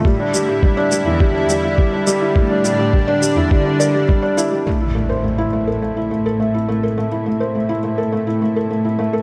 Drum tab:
SH |-x-x-x-x|-x-x-x-x|--------|--------|
BD |o-o-o-o-|o-o-o-o-|--------|--------|